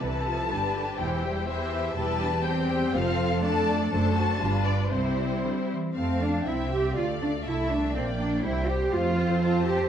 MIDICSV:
0, 0, Header, 1, 6, 480
1, 0, Start_track
1, 0, Key_signature, 0, "major"
1, 0, Tempo, 487409
1, 13, Time_signature, 2, 2, 24, 8
1, 3372, Tempo, 506329
1, 5778, Key_signature, -1, "major"
1, 6252, Tempo, 492611
1, 9590, End_track
2, 0, Start_track
2, 0, Title_t, "Violin section"
2, 0, Program_c, 0, 48
2, 4, Note_on_c, 0, 81, 73
2, 971, Note_off_c, 0, 81, 0
2, 974, Note_on_c, 0, 79, 58
2, 1454, Note_on_c, 0, 72, 65
2, 1456, Note_off_c, 0, 79, 0
2, 1921, Note_on_c, 0, 81, 80
2, 1934, Note_off_c, 0, 72, 0
2, 2397, Note_off_c, 0, 81, 0
2, 2404, Note_on_c, 0, 79, 70
2, 2888, Note_off_c, 0, 79, 0
2, 2900, Note_on_c, 0, 77, 79
2, 3372, Note_on_c, 0, 81, 83
2, 3377, Note_off_c, 0, 77, 0
2, 3827, Note_off_c, 0, 81, 0
2, 3838, Note_on_c, 0, 81, 81
2, 4540, Note_off_c, 0, 81, 0
2, 4553, Note_on_c, 0, 74, 64
2, 4799, Note_off_c, 0, 74, 0
2, 4802, Note_on_c, 0, 72, 51
2, 5523, Note_off_c, 0, 72, 0
2, 5777, Note_on_c, 0, 81, 38
2, 6219, Note_off_c, 0, 81, 0
2, 6254, Note_on_c, 0, 79, 46
2, 6731, Note_on_c, 0, 77, 44
2, 6738, Note_off_c, 0, 79, 0
2, 7218, Note_off_c, 0, 77, 0
2, 7220, Note_on_c, 0, 81, 50
2, 7698, Note_on_c, 0, 79, 45
2, 7699, Note_off_c, 0, 81, 0
2, 8167, Note_off_c, 0, 79, 0
2, 8179, Note_on_c, 0, 79, 56
2, 8647, Note_off_c, 0, 79, 0
2, 8656, Note_on_c, 0, 77, 50
2, 9126, Note_off_c, 0, 77, 0
2, 9133, Note_on_c, 0, 81, 60
2, 9590, Note_off_c, 0, 81, 0
2, 9590, End_track
3, 0, Start_track
3, 0, Title_t, "Violin section"
3, 0, Program_c, 1, 48
3, 0, Note_on_c, 1, 69, 40
3, 0, Note_on_c, 1, 71, 38
3, 468, Note_off_c, 1, 71, 0
3, 480, Note_off_c, 1, 69, 0
3, 480, Note_on_c, 1, 71, 38
3, 486, Note_on_c, 1, 67, 41
3, 958, Note_off_c, 1, 71, 0
3, 970, Note_on_c, 1, 72, 42
3, 1444, Note_off_c, 1, 67, 0
3, 1454, Note_off_c, 1, 72, 0
3, 1456, Note_on_c, 1, 67, 45
3, 1458, Note_on_c, 1, 76, 43
3, 1922, Note_off_c, 1, 67, 0
3, 1933, Note_on_c, 1, 71, 55
3, 1934, Note_on_c, 1, 67, 48
3, 1936, Note_off_c, 1, 76, 0
3, 2379, Note_off_c, 1, 71, 0
3, 2380, Note_off_c, 1, 67, 0
3, 2406, Note_on_c, 1, 67, 53
3, 2406, Note_on_c, 1, 72, 54
3, 2878, Note_off_c, 1, 72, 0
3, 2879, Note_off_c, 1, 67, 0
3, 2890, Note_on_c, 1, 72, 54
3, 2892, Note_on_c, 1, 69, 54
3, 3354, Note_off_c, 1, 69, 0
3, 3362, Note_off_c, 1, 72, 0
3, 3366, Note_on_c, 1, 69, 54
3, 3367, Note_on_c, 1, 74, 50
3, 3829, Note_off_c, 1, 69, 0
3, 3830, Note_off_c, 1, 74, 0
3, 3840, Note_on_c, 1, 69, 59
3, 3842, Note_on_c, 1, 72, 50
3, 4061, Note_off_c, 1, 69, 0
3, 4080, Note_on_c, 1, 66, 51
3, 4283, Note_off_c, 1, 72, 0
3, 4315, Note_on_c, 1, 65, 49
3, 4316, Note_off_c, 1, 66, 0
3, 4319, Note_on_c, 1, 71, 50
3, 4793, Note_off_c, 1, 71, 0
3, 4798, Note_on_c, 1, 72, 44
3, 4799, Note_on_c, 1, 64, 47
3, 4801, Note_off_c, 1, 65, 0
3, 5567, Note_off_c, 1, 72, 0
3, 5568, Note_off_c, 1, 64, 0
3, 5768, Note_on_c, 1, 77, 40
3, 6214, Note_off_c, 1, 77, 0
3, 6257, Note_on_c, 1, 76, 40
3, 6732, Note_on_c, 1, 74, 48
3, 6740, Note_off_c, 1, 76, 0
3, 7209, Note_off_c, 1, 74, 0
3, 7217, Note_on_c, 1, 76, 42
3, 7697, Note_on_c, 1, 74, 50
3, 7698, Note_off_c, 1, 76, 0
3, 8176, Note_off_c, 1, 74, 0
3, 8177, Note_on_c, 1, 72, 50
3, 8641, Note_off_c, 1, 72, 0
3, 8653, Note_on_c, 1, 72, 58
3, 9590, Note_off_c, 1, 72, 0
3, 9590, End_track
4, 0, Start_track
4, 0, Title_t, "Cello section"
4, 0, Program_c, 2, 48
4, 16, Note_on_c, 2, 48, 43
4, 488, Note_off_c, 2, 48, 0
4, 498, Note_on_c, 2, 43, 46
4, 967, Note_off_c, 2, 43, 0
4, 978, Note_on_c, 2, 40, 48
4, 1925, Note_off_c, 2, 40, 0
4, 1937, Note_on_c, 2, 40, 56
4, 2854, Note_off_c, 2, 40, 0
4, 2891, Note_on_c, 2, 41, 67
4, 3841, Note_off_c, 2, 41, 0
4, 3842, Note_on_c, 2, 42, 58
4, 4282, Note_off_c, 2, 42, 0
4, 4317, Note_on_c, 2, 43, 49
4, 4796, Note_on_c, 2, 48, 45
4, 4801, Note_off_c, 2, 43, 0
4, 5233, Note_off_c, 2, 48, 0
4, 5289, Note_on_c, 2, 50, 46
4, 5365, Note_off_c, 2, 50, 0
4, 5537, Note_on_c, 2, 52, 40
4, 5773, Note_off_c, 2, 52, 0
4, 5776, Note_on_c, 2, 60, 58
4, 5998, Note_off_c, 2, 60, 0
4, 6018, Note_on_c, 2, 62, 53
4, 6253, Note_on_c, 2, 64, 50
4, 6254, Note_off_c, 2, 62, 0
4, 6495, Note_off_c, 2, 64, 0
4, 6496, Note_on_c, 2, 67, 55
4, 6733, Note_off_c, 2, 67, 0
4, 6741, Note_on_c, 2, 65, 69
4, 6819, Note_off_c, 2, 65, 0
4, 6986, Note_on_c, 2, 62, 55
4, 7063, Note_off_c, 2, 62, 0
4, 7231, Note_on_c, 2, 64, 56
4, 7461, Note_off_c, 2, 64, 0
4, 7466, Note_on_c, 2, 62, 58
4, 7703, Note_off_c, 2, 62, 0
4, 7706, Note_on_c, 2, 60, 74
4, 7784, Note_off_c, 2, 60, 0
4, 7941, Note_on_c, 2, 62, 61
4, 8174, Note_off_c, 2, 62, 0
4, 8183, Note_on_c, 2, 64, 67
4, 8414, Note_off_c, 2, 64, 0
4, 8420, Note_on_c, 2, 67, 67
4, 8657, Note_off_c, 2, 67, 0
4, 8660, Note_on_c, 2, 65, 80
4, 9126, Note_off_c, 2, 65, 0
4, 9138, Note_on_c, 2, 65, 77
4, 9371, Note_off_c, 2, 65, 0
4, 9374, Note_on_c, 2, 67, 72
4, 9590, Note_off_c, 2, 67, 0
4, 9590, End_track
5, 0, Start_track
5, 0, Title_t, "Viola section"
5, 0, Program_c, 3, 48
5, 15, Note_on_c, 3, 52, 39
5, 16, Note_on_c, 3, 64, 38
5, 258, Note_off_c, 3, 52, 0
5, 258, Note_on_c, 3, 53, 43
5, 489, Note_off_c, 3, 64, 0
5, 491, Note_on_c, 3, 62, 36
5, 492, Note_on_c, 3, 55, 39
5, 497, Note_off_c, 3, 53, 0
5, 733, Note_off_c, 3, 55, 0
5, 735, Note_on_c, 3, 50, 40
5, 814, Note_off_c, 3, 50, 0
5, 973, Note_off_c, 3, 62, 0
5, 974, Note_on_c, 3, 52, 46
5, 977, Note_on_c, 3, 64, 41
5, 1211, Note_off_c, 3, 52, 0
5, 1214, Note_on_c, 3, 55, 46
5, 1443, Note_off_c, 3, 64, 0
5, 1455, Note_on_c, 3, 52, 42
5, 1455, Note_on_c, 3, 64, 39
5, 1456, Note_off_c, 3, 55, 0
5, 1920, Note_off_c, 3, 64, 0
5, 1924, Note_off_c, 3, 52, 0
5, 1932, Note_on_c, 3, 64, 41
5, 1933, Note_on_c, 3, 55, 50
5, 2156, Note_off_c, 3, 64, 0
5, 2172, Note_on_c, 3, 62, 49
5, 2251, Note_off_c, 3, 62, 0
5, 2379, Note_off_c, 3, 55, 0
5, 2398, Note_on_c, 3, 60, 49
5, 2399, Note_on_c, 3, 55, 44
5, 2875, Note_off_c, 3, 60, 0
5, 2876, Note_off_c, 3, 55, 0
5, 2885, Note_on_c, 3, 60, 47
5, 2889, Note_on_c, 3, 65, 53
5, 3369, Note_on_c, 3, 57, 50
5, 3369, Note_on_c, 3, 62, 44
5, 3370, Note_off_c, 3, 60, 0
5, 3372, Note_off_c, 3, 65, 0
5, 3831, Note_off_c, 3, 62, 0
5, 3832, Note_off_c, 3, 57, 0
5, 3841, Note_on_c, 3, 62, 48
5, 3843, Note_on_c, 3, 57, 48
5, 4282, Note_off_c, 3, 62, 0
5, 4283, Note_off_c, 3, 57, 0
5, 4313, Note_on_c, 3, 62, 44
5, 4315, Note_on_c, 3, 55, 42
5, 4782, Note_off_c, 3, 55, 0
5, 4790, Note_off_c, 3, 62, 0
5, 4793, Note_on_c, 3, 55, 47
5, 4795, Note_on_c, 3, 60, 43
5, 5565, Note_off_c, 3, 55, 0
5, 5582, Note_off_c, 3, 60, 0
5, 5772, Note_on_c, 3, 57, 41
5, 6217, Note_off_c, 3, 57, 0
5, 6251, Note_on_c, 3, 60, 37
5, 6728, Note_on_c, 3, 57, 43
5, 6737, Note_off_c, 3, 60, 0
5, 7209, Note_off_c, 3, 57, 0
5, 7221, Note_on_c, 3, 57, 41
5, 7690, Note_off_c, 3, 57, 0
5, 7697, Note_on_c, 3, 58, 45
5, 8166, Note_off_c, 3, 58, 0
5, 8176, Note_on_c, 3, 55, 44
5, 8655, Note_off_c, 3, 55, 0
5, 8656, Note_on_c, 3, 57, 52
5, 8888, Note_on_c, 3, 60, 51
5, 8896, Note_off_c, 3, 57, 0
5, 9590, Note_off_c, 3, 60, 0
5, 9590, End_track
6, 0, Start_track
6, 0, Title_t, "Double bass section"
6, 0, Program_c, 4, 48
6, 12, Note_on_c, 4, 36, 42
6, 462, Note_off_c, 4, 36, 0
6, 492, Note_on_c, 4, 31, 41
6, 940, Note_off_c, 4, 31, 0
6, 970, Note_on_c, 4, 28, 47
6, 1420, Note_off_c, 4, 28, 0
6, 1929, Note_on_c, 4, 28, 46
6, 2377, Note_off_c, 4, 28, 0
6, 2887, Note_on_c, 4, 29, 55
6, 3337, Note_off_c, 4, 29, 0
6, 3837, Note_on_c, 4, 30, 52
6, 4280, Note_off_c, 4, 30, 0
6, 4313, Note_on_c, 4, 31, 49
6, 4766, Note_off_c, 4, 31, 0
6, 4798, Note_on_c, 4, 36, 45
6, 5257, Note_off_c, 4, 36, 0
6, 5773, Note_on_c, 4, 41, 44
6, 6217, Note_off_c, 4, 41, 0
6, 6251, Note_on_c, 4, 36, 49
6, 6727, Note_off_c, 4, 36, 0
6, 6742, Note_on_c, 4, 38, 49
6, 7221, Note_on_c, 4, 36, 46
6, 7224, Note_off_c, 4, 38, 0
6, 7690, Note_off_c, 4, 36, 0
6, 7697, Note_on_c, 4, 34, 51
6, 8176, Note_off_c, 4, 34, 0
6, 8177, Note_on_c, 4, 36, 56
6, 8645, Note_off_c, 4, 36, 0
6, 8654, Note_on_c, 4, 41, 62
6, 9590, Note_off_c, 4, 41, 0
6, 9590, End_track
0, 0, End_of_file